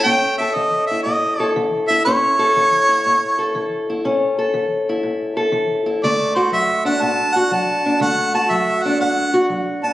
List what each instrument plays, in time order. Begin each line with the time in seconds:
Already playing: steel-string acoustic guitar A4
0.03 steel-string acoustic guitar A2 C#4, harmonica G5
0.38 steel-string acoustic guitar A4, harmonica E5
0.55 steel-string acoustic guitar E3, harmonica D#5
0.86 harmonica E5
0.91 steel-string acoustic guitar E4
1.03 steel-string acoustic guitar A2, harmonica D#5
1.40 steel-string acoustic guitar A4
1.56 steel-string acoustic guitar E3
1.88 steel-string acoustic guitar E4, harmonica E5
2.05 steel-string acoustic guitar A2 C#4, harmonica C#5
2.39 steel-string acoustic guitar A4
2.56 steel-string acoustic guitar E3
2.89 steel-string acoustic guitar E4
3.06 steel-string acoustic guitar A2
3.39 steel-string acoustic guitar A4
3.55 steel-string acoustic guitar E3
3.90 steel-string acoustic guitar E4
4.05 steel-string acoustic guitar A2 C#4
4.39 steel-string acoustic guitar A4
4.54 steel-string acoustic guitar E3
4.89 steel-string acoustic guitar E4
5.03 steel-string acoustic guitar A2
5.37 steel-string acoustic guitar A4
5.52 steel-string acoustic guitar E3
5.86 steel-string acoustic guitar E4
6.03 steel-string acoustic guitar D3 A3, harmonica D5
6.35 steel-string acoustic guitar F#4, harmonica C5
6.52 steel-string acoustic guitar F#3, harmonica E5
6.85 steel-string acoustic guitar D4, harmonica F#5
7.02 steel-string acoustic guitar A2, harmonica A5
7.35 steel-string acoustic guitar F#4, harmonica F#5
7.51 steel-string acoustic guitar F#3, harmonica A5
7.86 steel-string acoustic guitar D4
8.00 steel-string acoustic guitar D3 A3, harmonica F#5
8.34 steel-string acoustic guitar F#4, harmonica A5
8.50 steel-string acoustic guitar F#3, harmonica E5
8.83 steel-string acoustic guitar D4, harmonica F#5
9.00 steel-string acoustic guitar A2, harmonica F#5
9.34 steel-string acoustic guitar F#4
9.50 steel-string acoustic guitar F#3
9.83 steel-string acoustic guitar D4, harmonica A5